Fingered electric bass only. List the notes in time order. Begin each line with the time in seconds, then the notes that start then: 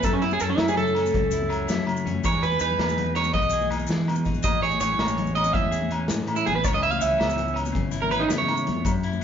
0.04 F#2
0.41 F#2
0.58 F#2
1.14 C#2
1.70 F#3
2.06 F#2
2.25 E2
2.61 E2
2.79 E2
3.33 B1
3.89 E3
4.26 A#1
4.44 A1
4.81 A1
4.99 A1
5.54 E2
6.10 A2
6.47 A1
6.64 C#2
7.03 C#2
7.20 C#2
7.75 G#1
8.32 C#3
8.69 F2
8.86 F#2